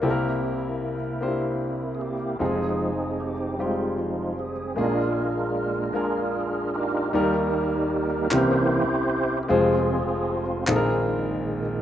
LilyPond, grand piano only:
<<
  \new Staff \with { instrumentName = "Grand piano" } { \time 6/8 \key ees \major \tempo 4. = 51 <bes c' e' g' a' bes'>4 r8 <bes c' d' e' g' c''>4 r8 | <aes c' ees' f' aes'>4 r8 <g aes c' ees' f' g'>4 r8 | <aes bes des' d' f' aes'>4 r8 <aes bes d' f' bes'>4 r8 | <g bes ees' g' bes'>4 r8 <c' des' e' g' bes'>4 r8 |
<aes c' f' aes' c''>4 r8 <c' ees' f' aes' a' bes'>4 r8 | }
  \new Staff \with { instrumentName = "Grand piano" } { \clef bass \time 6/8 \key ees \major <c, c>2. | <f,, f,>2. | <bes,, bes,>2. | <ees, ees>4. <c, c>4. |
<f,, f,>4. <bes,, bes,>4. | }
>>